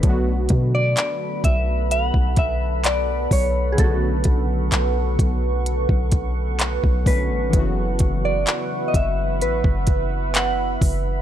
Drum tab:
HH |x-x-x-x-x-x-x-o-|x-x-x-x-x-x-x-o-|x-x-x-x-x-x-x-o-|
CP |----x-------x---|----x-------x---|----x-------x---|
BD |o-o---o--oo---o-|o-o---o--oo--oo-|o-o---o--oo---o-|